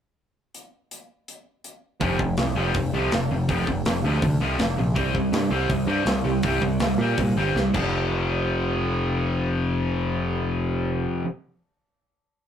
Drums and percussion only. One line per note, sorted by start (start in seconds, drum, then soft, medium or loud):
0.55 closed hi-hat medium
0.91 closed hi-hat medium
1.28 closed hi-hat medium
1.64 closed hi-hat medium
2.00 kick loud
2.00 open hi-hat medium
2.19 kick medium
2.37 snare loud
2.37 open hi-hat medium
2.74 kick loud
2.74 open hi-hat medium
3.12 snare loud
3.12 open hi-hat medium
3.49 kick loud
3.49 open hi-hat medium
3.67 kick medium
3.85 snare loud
3.85 open hi-hat medium
4.22 kick loud
4.22 open hi-hat medium
4.59 snare loud
4.59 open hi-hat medium
4.96 kick loud
4.96 open hi-hat medium
5.15 kick medium
5.33 snare loud
5.33 open hi-hat medium
5.70 kick loud
5.70 open hi-hat medium
6.06 snare loud
6.06 open hi-hat medium
6.43 kick loud
6.43 open hi-hat medium
6.62 kick medium
6.80 snare loud
6.80 open hi-hat medium
7.17 kick loud
7.17 open hi-hat medium
7.56 snare medium
7.74 kick loud
7.74 crash medium